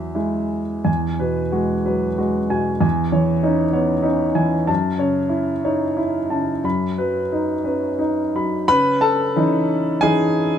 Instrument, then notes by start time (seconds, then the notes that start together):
grand piano
Already playing: E2 F#3 E5
0.15 G#3 E4
0.85 E2 G#5
1.19 B2 B4
1.52 G#3 F#4
1.86 F#3 B4
2.18 G#3 F#4
2.50 B2 G#5
2.81 E2 G#5
3.12 E3 C#5
3.43 C#4 D#4
3.73 B3 C#5
4.02 C#4 D#4
4.35 E3 G#5
4.67 F#2 A5
4.98 C#3 C#5
5.29 E4
5.64 D#4 C#5
5.97 E4
6.30 C#3 A5
6.64 F#2 B5
6.98 F#3 B4
7.32 D#4
7.64 C#4 B4
7.99 D#4
8.35 F#3 B5
8.68 C#3 B4 B5
9.01 A4 A5
9.36 E3 C#4 D#4
10.01 E3 C#4 D#4 G#4 G#5